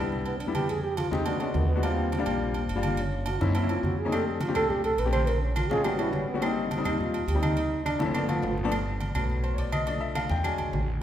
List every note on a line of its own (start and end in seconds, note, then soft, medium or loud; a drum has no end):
0.00 0.37 C2 medium
0.00 0.30 G3 medium
0.00 0.30 B3 medium
0.00 0.30 D4 medium
0.00 0.31 E4 medium
0.12 high conga soft
0.12 low conga medium
0.26 0.43 B3 loud
0.26 high conga soft
0.26 low agogo medium
0.40 1.06 F2 medium
0.40 0.54 D4 medium
0.40 high conga soft
0.40 low agogo medium
0.47 0.69 G3 medium
0.47 0.69 B3 medium
0.47 0.69 D4 medium
0.47 0.69 E4 medium
0.55 0.71 G4 loud
0.55 high conga medium
0.55 low agogo loud
0.69 0.83 G#4 loud
0.69 high conga soft
0.69 low agogo medium
0.83 0.98 G4 loud
0.83 high conga soft
0.97 1.11 F4 loud
0.97 high conga medium
0.97 low agogo loud
1.11 1.52 E2 medium
1.11 1.22 G#3 medium
1.11 1.22 C4 medium
1.11 1.28 D#4 loud
1.11 1.22 D#4 medium
1.11 1.22 G4 medium
1.11 high conga medium
1.25 1.36 G#3 medium
1.25 1.36 B3 medium
1.25 1.36 D4 medium
1.25 1.40 D4 medium
1.25 1.36 F#4 medium
1.25 high conga soft
1.25 low agogo loud
1.39 1.65 G#3 medium
1.39 1.65 B3 medium
1.39 1.57 C#4 medium
1.39 1.66 D4 medium
1.39 1.66 F#4 medium
1.39 high conga soft
1.39 low agogo medium
1.54 2.21 D#2 medium
1.54 1.68 A#3 medium
1.54 high conga medium
1.54 low timbale medium
1.69 1.85 B3 medium
1.69 high conga soft
1.75 1.81 G#3 medium
1.75 1.81 B3 medium
1.75 1.81 D4 medium
1.75 1.81 F#4 medium
1.83 2.08 G3 medium
1.83 2.09 A#3 medium
1.83 2.70 C4 medium
1.83 2.09 D4 medium
1.83 2.09 F4 medium
1.83 low agogo loud
1.99 high conga soft
2.12 high conga medium
2.12 low agogo medium
2.18 2.59 G3 medium
2.18 2.59 A#3 medium
2.18 2.59 D4 medium
2.18 2.59 F4 medium
2.26 2.66 A#1 medium
2.26 high conga soft
2.26 low conga medium
2.26 low agogo loud
2.41 high conga soft
2.54 high conga soft
2.54 low agogo medium
2.69 3.35 F#1 medium
2.69 high conga soft
2.69 low agogo medium
2.76 2.98 G3 medium
2.76 2.98 A#3 medium
2.76 2.98 D4 medium
2.76 2.98 F4 loud
2.83 high conga medium
2.83 low agogo loud
2.97 3.30 C#4 medium
2.97 high conga soft
2.97 low agogo medium
3.13 high conga soft
3.26 3.43 F#4 loud
3.26 high conga medium
3.26 low agogo loud
3.40 3.81 F#2 loud
3.40 3.51 A#3 medium
3.40 3.51 C4 medium
3.40 3.51 C#4 medium
3.40 3.58 D#4 loud
3.40 3.51 E4 medium
3.40 high conga medium
3.55 3.65 A#3 medium
3.55 3.65 C4 medium
3.55 3.66 C#4 medium
3.55 3.66 E4 medium
3.55 3.72 E4 loud
3.55 high conga soft
3.55 low agogo loud
3.69 3.95 A#3 medium
3.69 3.95 C4 medium
3.69 3.95 C#4 medium
3.69 3.95 E4 medium
3.69 3.86 F4 loud
3.69 high conga soft
3.69 low agogo medium
3.83 4.50 F2 medium
3.83 4.01 F#4 medium
3.83 high conga medium
3.98 4.16 G#4 loud
3.98 high conga soft
4.05 4.10 A#3 medium
4.05 4.10 C4 medium
4.05 4.10 C#4 medium
4.05 4.11 D#4 medium
4.12 4.37 A3 medium
4.12 4.37 C4 medium
4.12 4.38 D4 medium
4.12 4.38 G4 medium
4.12 4.27 A4 loud
4.12 high conga soft
4.12 low agogo loud
4.12 claves medium
4.27 4.43 C4 medium
4.27 high conga soft
4.41 4.55 F4 medium
4.41 high conga medium
4.41 low agogo loud
4.48 4.88 A3 medium
4.48 4.89 C4 medium
4.48 4.89 D4 medium
4.48 4.89 G4 medium
4.55 4.95 C2 medium
4.55 4.73 A4 loud
4.55 high conga soft
4.55 low conga medium
4.55 low agogo loud
4.55 claves medium
4.70 4.84 G4 loud
4.70 high conga soft
4.70 low conga medium
4.84 5.01 A4 loud
4.84 high conga soft
4.84 low agogo medium
4.98 5.65 A#1 medium
4.98 5.12 B4 loud
4.98 high conga soft
4.98 low agogo medium
5.05 5.27 A3 medium
5.05 5.27 C4 medium
5.05 5.27 D4 medium
5.05 5.27 G4 medium
5.13 5.29 C5 loud
5.13 high conga medium
5.13 low agogo loud
5.13 claves medium
5.27 5.41 A#4 loud
5.27 low agogo medium
5.42 5.58 C#4 medium
5.42 high conga soft
5.56 5.71 F4 loud
5.56 high conga medium
5.56 low agogo loud
5.56 claves medium
5.70 6.10 A1 loud
5.70 5.80 G#3 medium
5.70 5.81 C4 medium
5.70 5.81 C#4 medium
5.70 5.81 F4 loud
5.70 5.86 G#4 loud
5.70 high conga medium
5.84 5.95 G3 medium
5.84 5.95 B3 medium
5.84 5.95 C#4 medium
5.84 5.95 F#4 medium
5.84 5.98 G4 loud
5.84 high conga soft
5.84 low agogo loud
5.84 claves medium
5.98 6.24 G3 medium
5.98 6.24 B3 medium
5.98 6.24 C#4 medium
5.98 6.14 E4 loud
5.98 6.25 F#4 medium
5.98 high conga soft
5.98 low agogo medium
6.13 6.79 G#1 medium
6.13 6.28 C#4 loud
6.13 high conga medium
6.28 6.41 B3 medium
6.28 high conga soft
6.34 6.39 G3 medium
6.34 6.40 B3 medium
6.34 6.40 C#4 medium
6.34 6.40 F#4 medium
6.42 6.67 G3 medium
6.42 6.67 A#3 medium
6.42 6.50 C4 loud
6.42 6.68 C4 medium
6.42 6.68 D#4 loud
6.42 high conga soft
6.42 low agogo loud
6.42 claves medium
6.57 high conga soft
6.71 high conga medium
6.71 low agogo loud
6.77 7.18 G3 medium
6.77 7.18 A#3 medium
6.77 7.18 C4 medium
6.77 7.18 D#4 medium
6.84 7.25 D#2 loud
6.84 7.02 D#4 loud
6.84 high conga soft
6.84 low conga medium
6.84 low agogo loud
6.84 claves medium
7.00 7.30 F4 medium
7.00 high conga soft
7.00 low conga medium
7.14 high conga soft
7.14 low agogo medium
7.28 7.94 D2 medium
7.28 7.41 G4 loud
7.28 high conga soft
7.28 low agogo medium
7.35 7.57 G3 medium
7.35 7.57 A#3 medium
7.35 7.57 C4 medium
7.35 7.57 D#4 medium
7.42 7.82 D#4 loud
7.42 high conga medium
7.42 low agogo loud
7.42 claves medium
7.57 high conga soft
7.57 low agogo medium
7.72 high conga soft
7.85 8.26 D4 loud
7.85 high conga medium
7.85 low agogo loud
7.85 claves medium
7.99 8.40 G1 loud
7.99 8.09 F3 medium
7.99 8.10 A3 medium
7.99 8.10 C4 medium
7.99 8.10 E4 medium
7.99 high conga loud
8.14 8.24 F3 medium
8.14 8.24 A3 medium
8.14 8.25 B3 medium
8.14 8.25 D4 medium
8.14 high conga medium
8.14 low agogo loud
8.14 claves medium
8.28 8.53 F3 medium
8.28 8.53 A3 medium
8.28 8.54 B3 medium
8.28 8.54 F4 medium
8.28 high conga medium
8.28 low agogo medium
8.42 9.09 G1 medium
8.42 low conga medium
8.42 low timbale medium
8.58 low conga medium
8.64 8.69 F3 loud
8.64 8.69 A3 loud
8.64 8.70 B3 loud
8.64 8.70 D4 loud
8.72 high conga soft
8.72 low agogo loud
8.72 claves medium
8.88 high conga soft
9.00 high conga medium
9.00 low agogo medium
9.15 9.55 B1 medium
9.15 9.83 F#3 medium
9.15 9.83 A3 medium
9.15 9.84 B3 medium
9.15 high conga soft
9.15 low conga medium
9.15 low agogo loud
9.15 claves medium
9.30 high conga soft
9.30 low conga medium
9.43 9.57 C5 medium
9.43 high conga soft
9.43 low agogo medium
9.54 9.56 C#5 medium
9.58 10.25 B1 medium
9.58 9.72 D5 medium
9.58 high conga soft
9.58 low agogo medium
9.72 9.86 D#5 medium
9.72 high conga medium
9.72 low agogo loud
9.72 claves medium
9.85 10.41 F3 medium
9.85 10.41 A3 soft
9.85 10.42 D4 medium
9.85 10.01 D5 medium
9.85 high conga soft
9.85 low agogo medium
10.01 10.15 E5 medium
10.01 high conga soft
10.15 10.30 F5 medium
10.15 high conga medium
10.15 low agogo loud
10.15 claves medium
10.30 10.57 E2 medium
10.30 10.44 G5 medium
10.30 high conga medium
10.43 10.85 F#3 medium
10.43 10.85 G#3 medium
10.43 10.85 D4 medium
10.43 10.98 G#5 medium
10.43 high conga soft
10.43 low agogo loud
10.43 claves medium
10.58 10.72 B1 medium
10.58 high conga soft
10.58 low agogo medium
10.73 11.03 A1 medium
10.73 high conga medium
10.73 low timbale medium
10.88 high conga soft